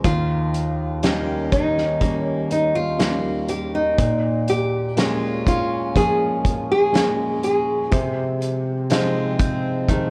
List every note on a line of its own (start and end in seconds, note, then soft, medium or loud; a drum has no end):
0.00 0.15 G#3 soft
0.00 0.15 C4 soft
0.00 0.16 F4 soft
0.04 3.94 D#2 medium
0.04 3.98 D#3 medium
0.04 1.48 F4 medium
0.04 kick medium
0.04 closed hi-hat medium
0.54 closed hi-hat medium
1.03 1.99 G3 soft
1.03 2.01 A#3 medium
1.03 1.99 C#4 soft
1.03 1.52 C#4 soft
1.03 1.99 D#4 soft
1.03 4.09 G4 medium
1.03 snare medium
1.03 closed hi-hat medium
1.52 4.98 C#4 soft
1.52 2.23 D#4 medium
1.52 kick medium
1.52 closed hi-hat medium
1.78 snare soft
2.01 2.97 G3 soft
2.01 2.99 A#3 medium
2.01 2.97 C#4 soft
2.01 2.97 D#4 soft
2.01 kick medium
2.01 closed hi-hat medium
2.23 2.51 C#4 medium
2.51 2.74 D#4 medium
2.51 closed hi-hat medium
2.76 3.45 F4 medium
2.99 3.95 G3 soft
2.99 4.97 A#3 medium
2.99 3.95 C#4 soft
2.99 3.95 D#4 soft
2.99 snare medium
2.99 closed hi-hat medium
3.48 3.72 G4 medium
3.48 closed hi-hat medium
3.75 4.44 D#4 medium
3.98 7.88 A#2 medium
3.98 7.91 A#2 medium
3.98 kick medium
3.98 closed hi-hat medium
4.48 5.48 G4 medium
4.48 closed hi-hat medium
4.96 5.92 G#3 soft
4.96 6.93 G#3 medium
4.96 5.92 A#3 soft
4.96 5.92 C#4 medium
4.96 5.46 C#4 medium
4.96 8.49 F4 medium
4.96 snare medium
4.96 closed hi-hat medium
5.46 8.02 C#4 medium
5.46 5.93 F4 medium
5.46 kick medium
5.46 closed hi-hat medium
5.95 9.46 F3 medium
5.95 6.90 G#3 soft
5.95 6.91 A#3 soft
5.95 6.91 C#4 medium
5.95 6.70 G#4 medium
5.95 kick medium
5.95 closed hi-hat medium
6.45 kick medium
6.45 closed hi-hat medium
6.71 7.43 G#4 medium
6.93 7.88 G#3 soft
6.93 8.89 G#3 medium
6.93 7.88 A#3 soft
6.93 7.88 C#4 soft
6.93 snare loud
6.93 closed hi-hat medium
7.43 9.84 G#4 medium
7.43 closed hi-hat medium
7.91 10.10 C3 medium
7.91 kick medium
7.91 closed hi-hat medium
8.42 closed hi-hat medium
8.90 9.86 F3 soft
8.90 10.10 G#3 medium
8.90 9.86 G#3 soft
8.90 9.39 C4 medium
8.90 9.86 D#4 soft
8.90 10.10 F4 medium
8.90 snare medium
8.90 closed hi-hat medium
9.39 10.10 C4 medium
9.39 kick medium
9.39 closed hi-hat medium
9.84 10.10 G4 medium
9.89 10.10 D#3 medium
9.89 10.10 F3 soft
9.89 10.10 G#3 soft
9.89 10.10 D#4 medium
9.89 kick medium
9.89 closed hi-hat medium